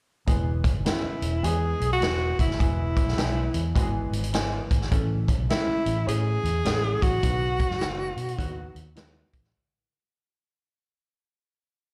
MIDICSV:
0, 0, Header, 1, 6, 480
1, 0, Start_track
1, 0, Key_signature, 4, "major"
1, 0, Tempo, 579151
1, 231, Time_signature, 4, 2, 24, 8
1, 9893, End_track
2, 0, Start_track
2, 0, Title_t, "Tenor saxophone"
2, 0, Program_c, 0, 66
2, 723, Note_on_c, 0, 64, 74
2, 1201, Note_on_c, 0, 68, 86
2, 1214, Note_off_c, 0, 64, 0
2, 1591, Note_off_c, 0, 68, 0
2, 1597, Note_on_c, 0, 66, 97
2, 1958, Note_off_c, 0, 66, 0
2, 1992, Note_on_c, 0, 64, 77
2, 2151, Note_off_c, 0, 64, 0
2, 2165, Note_on_c, 0, 64, 75
2, 3088, Note_off_c, 0, 64, 0
2, 4560, Note_on_c, 0, 64, 90
2, 5004, Note_off_c, 0, 64, 0
2, 5041, Note_on_c, 0, 68, 100
2, 5823, Note_on_c, 0, 66, 93
2, 5835, Note_off_c, 0, 68, 0
2, 7435, Note_off_c, 0, 66, 0
2, 9893, End_track
3, 0, Start_track
3, 0, Title_t, "Upright piano"
3, 0, Program_c, 1, 0
3, 219, Note_on_c, 1, 52, 72
3, 226, Note_on_c, 1, 56, 64
3, 228, Note_on_c, 1, 59, 73
3, 233, Note_on_c, 1, 68, 82
3, 603, Note_off_c, 1, 52, 0
3, 606, Note_off_c, 1, 56, 0
3, 608, Note_off_c, 1, 59, 0
3, 610, Note_off_c, 1, 68, 0
3, 702, Note_on_c, 1, 52, 59
3, 707, Note_on_c, 1, 56, 60
3, 712, Note_on_c, 1, 59, 58
3, 712, Note_on_c, 1, 61, 70
3, 1085, Note_off_c, 1, 52, 0
3, 1088, Note_off_c, 1, 56, 0
3, 1090, Note_off_c, 1, 59, 0
3, 1090, Note_off_c, 1, 61, 0
3, 1181, Note_on_c, 1, 52, 71
3, 1184, Note_on_c, 1, 56, 64
3, 1190, Note_on_c, 1, 59, 64
3, 1191, Note_on_c, 1, 68, 85
3, 1565, Note_off_c, 1, 52, 0
3, 1566, Note_off_c, 1, 56, 0
3, 1569, Note_off_c, 1, 59, 0
3, 1570, Note_off_c, 1, 68, 0
3, 1661, Note_on_c, 1, 52, 70
3, 1662, Note_on_c, 1, 56, 60
3, 1666, Note_on_c, 1, 59, 58
3, 1670, Note_on_c, 1, 68, 65
3, 2045, Note_off_c, 1, 52, 0
3, 2046, Note_off_c, 1, 56, 0
3, 2048, Note_off_c, 1, 59, 0
3, 2050, Note_off_c, 1, 68, 0
3, 2140, Note_on_c, 1, 52, 60
3, 2143, Note_on_c, 1, 56, 60
3, 2143, Note_on_c, 1, 59, 60
3, 2147, Note_on_c, 1, 68, 76
3, 2525, Note_off_c, 1, 52, 0
3, 2526, Note_off_c, 1, 56, 0
3, 2527, Note_off_c, 1, 59, 0
3, 2528, Note_off_c, 1, 68, 0
3, 2622, Note_on_c, 1, 52, 64
3, 2628, Note_on_c, 1, 56, 52
3, 2628, Note_on_c, 1, 59, 54
3, 2630, Note_on_c, 1, 68, 67
3, 3006, Note_off_c, 1, 52, 0
3, 3009, Note_off_c, 1, 56, 0
3, 3009, Note_off_c, 1, 59, 0
3, 3010, Note_off_c, 1, 68, 0
3, 3106, Note_on_c, 1, 52, 92
3, 3111, Note_on_c, 1, 56, 89
3, 3112, Note_on_c, 1, 59, 86
3, 3115, Note_on_c, 1, 66, 82
3, 3168, Note_on_c, 1, 68, 96
3, 3184, Note_off_c, 1, 66, 0
3, 3488, Note_off_c, 1, 52, 0
3, 3490, Note_off_c, 1, 56, 0
3, 3491, Note_off_c, 1, 59, 0
3, 3518, Note_off_c, 1, 68, 0
3, 3589, Note_on_c, 1, 52, 81
3, 3594, Note_on_c, 1, 56, 74
3, 3597, Note_on_c, 1, 59, 71
3, 3601, Note_on_c, 1, 68, 79
3, 3969, Note_off_c, 1, 52, 0
3, 3971, Note_off_c, 1, 56, 0
3, 3973, Note_off_c, 1, 59, 0
3, 3975, Note_off_c, 1, 68, 0
3, 4068, Note_on_c, 1, 52, 78
3, 4075, Note_on_c, 1, 57, 75
3, 4078, Note_on_c, 1, 61, 73
3, 4082, Note_on_c, 1, 69, 83
3, 4448, Note_off_c, 1, 52, 0
3, 4451, Note_off_c, 1, 57, 0
3, 4453, Note_off_c, 1, 61, 0
3, 4455, Note_off_c, 1, 69, 0
3, 4549, Note_on_c, 1, 52, 59
3, 4553, Note_on_c, 1, 57, 52
3, 4557, Note_on_c, 1, 59, 43
3, 4563, Note_on_c, 1, 64, 72
3, 4612, Note_on_c, 1, 61, 56
3, 4624, Note_off_c, 1, 59, 0
3, 4928, Note_off_c, 1, 52, 0
3, 4930, Note_off_c, 1, 57, 0
3, 4935, Note_off_c, 1, 64, 0
3, 4959, Note_off_c, 1, 61, 0
3, 5025, Note_on_c, 1, 52, 72
3, 5028, Note_on_c, 1, 61, 64
3, 5029, Note_on_c, 1, 57, 75
3, 5031, Note_on_c, 1, 73, 86
3, 5405, Note_off_c, 1, 52, 0
3, 5407, Note_off_c, 1, 57, 0
3, 5407, Note_off_c, 1, 61, 0
3, 5408, Note_off_c, 1, 73, 0
3, 5506, Note_on_c, 1, 52, 64
3, 5509, Note_on_c, 1, 57, 68
3, 5514, Note_on_c, 1, 61, 56
3, 5517, Note_on_c, 1, 69, 72
3, 5886, Note_off_c, 1, 52, 0
3, 5887, Note_off_c, 1, 57, 0
3, 5890, Note_off_c, 1, 61, 0
3, 5891, Note_off_c, 1, 69, 0
3, 5992, Note_on_c, 1, 51, 64
3, 5995, Note_on_c, 1, 54, 56
3, 5998, Note_on_c, 1, 59, 64
3, 6002, Note_on_c, 1, 66, 72
3, 6368, Note_off_c, 1, 51, 0
3, 6370, Note_off_c, 1, 54, 0
3, 6371, Note_off_c, 1, 59, 0
3, 6373, Note_off_c, 1, 66, 0
3, 6469, Note_on_c, 1, 51, 68
3, 6473, Note_on_c, 1, 54, 68
3, 6477, Note_on_c, 1, 59, 69
3, 6480, Note_on_c, 1, 66, 71
3, 6847, Note_off_c, 1, 51, 0
3, 6848, Note_off_c, 1, 54, 0
3, 6851, Note_off_c, 1, 59, 0
3, 6852, Note_off_c, 1, 66, 0
3, 6941, Note_on_c, 1, 51, 77
3, 6946, Note_on_c, 1, 54, 80
3, 6951, Note_on_c, 1, 59, 72
3, 6952, Note_on_c, 1, 66, 102
3, 7322, Note_off_c, 1, 51, 0
3, 7325, Note_off_c, 1, 54, 0
3, 7328, Note_off_c, 1, 59, 0
3, 7328, Note_off_c, 1, 66, 0
3, 7422, Note_on_c, 1, 51, 76
3, 7425, Note_on_c, 1, 54, 67
3, 7430, Note_on_c, 1, 59, 70
3, 7435, Note_on_c, 1, 66, 88
3, 7803, Note_off_c, 1, 51, 0
3, 7805, Note_off_c, 1, 54, 0
3, 7807, Note_off_c, 1, 59, 0
3, 7809, Note_off_c, 1, 66, 0
3, 9893, End_track
4, 0, Start_track
4, 0, Title_t, "Fingered electric bass"
4, 0, Program_c, 2, 33
4, 226, Note_on_c, 2, 28, 88
4, 548, Note_off_c, 2, 28, 0
4, 616, Note_on_c, 2, 30, 82
4, 692, Note_off_c, 2, 30, 0
4, 1009, Note_on_c, 2, 28, 88
4, 1157, Note_off_c, 2, 28, 0
4, 1186, Note_on_c, 2, 40, 87
4, 1437, Note_off_c, 2, 40, 0
4, 1494, Note_on_c, 2, 35, 76
4, 1640, Note_off_c, 2, 35, 0
4, 1670, Note_on_c, 2, 28, 93
4, 1920, Note_off_c, 2, 28, 0
4, 1981, Note_on_c, 2, 30, 65
4, 2124, Note_off_c, 2, 30, 0
4, 2155, Note_on_c, 2, 28, 93
4, 2475, Note_off_c, 2, 28, 0
4, 2541, Note_on_c, 2, 35, 75
4, 2616, Note_off_c, 2, 35, 0
4, 2631, Note_on_c, 2, 35, 89
4, 2880, Note_off_c, 2, 35, 0
4, 2936, Note_on_c, 2, 40, 91
4, 3081, Note_off_c, 2, 40, 0
4, 3113, Note_on_c, 2, 32, 89
4, 3362, Note_off_c, 2, 32, 0
4, 3412, Note_on_c, 2, 32, 85
4, 3806, Note_off_c, 2, 32, 0
4, 3900, Note_on_c, 2, 32, 77
4, 4044, Note_off_c, 2, 32, 0
4, 4072, Note_on_c, 2, 33, 105
4, 4392, Note_off_c, 2, 33, 0
4, 4463, Note_on_c, 2, 35, 81
4, 4537, Note_off_c, 2, 35, 0
4, 4856, Note_on_c, 2, 33, 90
4, 5000, Note_off_c, 2, 33, 0
4, 5033, Note_on_c, 2, 45, 87
4, 5280, Note_off_c, 2, 45, 0
4, 5334, Note_on_c, 2, 40, 75
4, 5479, Note_off_c, 2, 40, 0
4, 5511, Note_on_c, 2, 33, 86
4, 5759, Note_off_c, 2, 33, 0
4, 5818, Note_on_c, 2, 33, 81
4, 5961, Note_off_c, 2, 33, 0
4, 5990, Note_on_c, 2, 35, 88
4, 6310, Note_off_c, 2, 35, 0
4, 6384, Note_on_c, 2, 42, 83
4, 6456, Note_off_c, 2, 42, 0
4, 6465, Note_on_c, 2, 30, 81
4, 6715, Note_off_c, 2, 30, 0
4, 6768, Note_on_c, 2, 47, 82
4, 6914, Note_off_c, 2, 47, 0
4, 6950, Note_on_c, 2, 39, 64
4, 7198, Note_off_c, 2, 39, 0
4, 7251, Note_on_c, 2, 39, 83
4, 7643, Note_off_c, 2, 39, 0
4, 7735, Note_on_c, 2, 33, 73
4, 7879, Note_off_c, 2, 33, 0
4, 9893, End_track
5, 0, Start_track
5, 0, Title_t, "Muted fingered electric bass strokes"
5, 858, Note_on_c, 9, 29, 39
5, 941, Note_off_c, 9, 29, 0
5, 4703, Note_on_c, 9, 29, 39
5, 4786, Note_off_c, 9, 29, 0
5, 9893, End_track
6, 0, Start_track
6, 0, Title_t, "Drums"
6, 227, Note_on_c, 9, 42, 83
6, 229, Note_on_c, 9, 36, 89
6, 310, Note_off_c, 9, 42, 0
6, 312, Note_off_c, 9, 36, 0
6, 532, Note_on_c, 9, 36, 91
6, 536, Note_on_c, 9, 42, 73
6, 615, Note_off_c, 9, 36, 0
6, 619, Note_off_c, 9, 42, 0
6, 712, Note_on_c, 9, 42, 78
6, 716, Note_on_c, 9, 38, 99
6, 795, Note_off_c, 9, 42, 0
6, 799, Note_off_c, 9, 38, 0
6, 1013, Note_on_c, 9, 42, 67
6, 1096, Note_off_c, 9, 42, 0
6, 1195, Note_on_c, 9, 42, 93
6, 1278, Note_off_c, 9, 42, 0
6, 1504, Note_on_c, 9, 42, 51
6, 1586, Note_off_c, 9, 42, 0
6, 1674, Note_on_c, 9, 42, 72
6, 1682, Note_on_c, 9, 38, 96
6, 1757, Note_off_c, 9, 42, 0
6, 1765, Note_off_c, 9, 38, 0
6, 1983, Note_on_c, 9, 36, 92
6, 1987, Note_on_c, 9, 42, 87
6, 2066, Note_off_c, 9, 36, 0
6, 2070, Note_off_c, 9, 42, 0
6, 2079, Note_on_c, 9, 38, 34
6, 2157, Note_on_c, 9, 36, 93
6, 2160, Note_on_c, 9, 42, 78
6, 2162, Note_off_c, 9, 38, 0
6, 2240, Note_off_c, 9, 36, 0
6, 2243, Note_off_c, 9, 42, 0
6, 2459, Note_on_c, 9, 36, 89
6, 2462, Note_on_c, 9, 42, 65
6, 2542, Note_off_c, 9, 36, 0
6, 2545, Note_off_c, 9, 42, 0
6, 2556, Note_on_c, 9, 38, 33
6, 2635, Note_on_c, 9, 42, 75
6, 2638, Note_off_c, 9, 38, 0
6, 2639, Note_on_c, 9, 38, 97
6, 2718, Note_off_c, 9, 42, 0
6, 2722, Note_off_c, 9, 38, 0
6, 2934, Note_on_c, 9, 42, 73
6, 3017, Note_off_c, 9, 42, 0
6, 3112, Note_on_c, 9, 36, 84
6, 3116, Note_on_c, 9, 42, 88
6, 3195, Note_off_c, 9, 36, 0
6, 3199, Note_off_c, 9, 42, 0
6, 3425, Note_on_c, 9, 42, 58
6, 3508, Note_off_c, 9, 42, 0
6, 3511, Note_on_c, 9, 42, 59
6, 3594, Note_off_c, 9, 42, 0
6, 3594, Note_on_c, 9, 42, 85
6, 3602, Note_on_c, 9, 38, 101
6, 3677, Note_off_c, 9, 42, 0
6, 3685, Note_off_c, 9, 38, 0
6, 3903, Note_on_c, 9, 36, 90
6, 3905, Note_on_c, 9, 42, 81
6, 3986, Note_off_c, 9, 36, 0
6, 3988, Note_off_c, 9, 42, 0
6, 3992, Note_on_c, 9, 38, 33
6, 4074, Note_on_c, 9, 42, 82
6, 4075, Note_off_c, 9, 38, 0
6, 4076, Note_on_c, 9, 36, 90
6, 4157, Note_off_c, 9, 42, 0
6, 4159, Note_off_c, 9, 36, 0
6, 4379, Note_on_c, 9, 36, 82
6, 4383, Note_on_c, 9, 42, 74
6, 4462, Note_off_c, 9, 36, 0
6, 4466, Note_off_c, 9, 42, 0
6, 4561, Note_on_c, 9, 42, 74
6, 4564, Note_on_c, 9, 38, 100
6, 4643, Note_off_c, 9, 42, 0
6, 4647, Note_off_c, 9, 38, 0
6, 4859, Note_on_c, 9, 42, 74
6, 4941, Note_off_c, 9, 42, 0
6, 5043, Note_on_c, 9, 42, 93
6, 5126, Note_off_c, 9, 42, 0
6, 5349, Note_on_c, 9, 42, 55
6, 5432, Note_off_c, 9, 42, 0
6, 5515, Note_on_c, 9, 42, 80
6, 5523, Note_on_c, 9, 38, 108
6, 5598, Note_off_c, 9, 42, 0
6, 5606, Note_off_c, 9, 38, 0
6, 5821, Note_on_c, 9, 36, 89
6, 5828, Note_on_c, 9, 42, 73
6, 5904, Note_off_c, 9, 36, 0
6, 5911, Note_off_c, 9, 42, 0
6, 5994, Note_on_c, 9, 36, 90
6, 5994, Note_on_c, 9, 42, 88
6, 6077, Note_off_c, 9, 36, 0
6, 6077, Note_off_c, 9, 42, 0
6, 6297, Note_on_c, 9, 36, 88
6, 6298, Note_on_c, 9, 42, 71
6, 6380, Note_off_c, 9, 36, 0
6, 6381, Note_off_c, 9, 42, 0
6, 6389, Note_on_c, 9, 38, 34
6, 6471, Note_off_c, 9, 38, 0
6, 6474, Note_on_c, 9, 42, 77
6, 6478, Note_on_c, 9, 38, 107
6, 6557, Note_off_c, 9, 42, 0
6, 6561, Note_off_c, 9, 38, 0
6, 6775, Note_on_c, 9, 42, 68
6, 6858, Note_off_c, 9, 42, 0
6, 6867, Note_on_c, 9, 42, 52
6, 6950, Note_off_c, 9, 42, 0
6, 6950, Note_on_c, 9, 36, 86
6, 6958, Note_on_c, 9, 42, 88
6, 7033, Note_off_c, 9, 36, 0
6, 7041, Note_off_c, 9, 42, 0
6, 7260, Note_on_c, 9, 42, 54
6, 7343, Note_off_c, 9, 42, 0
6, 7430, Note_on_c, 9, 42, 84
6, 7438, Note_on_c, 9, 38, 109
6, 7513, Note_off_c, 9, 42, 0
6, 7521, Note_off_c, 9, 38, 0
6, 7736, Note_on_c, 9, 42, 82
6, 7737, Note_on_c, 9, 36, 90
6, 7819, Note_off_c, 9, 42, 0
6, 7820, Note_off_c, 9, 36, 0
6, 7827, Note_on_c, 9, 38, 31
6, 7909, Note_off_c, 9, 38, 0
6, 9893, End_track
0, 0, End_of_file